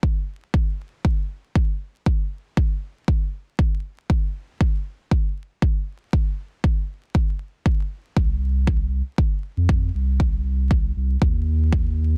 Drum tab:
BD |o-o-o-o-|o-o-o-o-|o-o-o-o-|o-o-o-o-|

BD |o-o-o-o-|o-o-o-o-|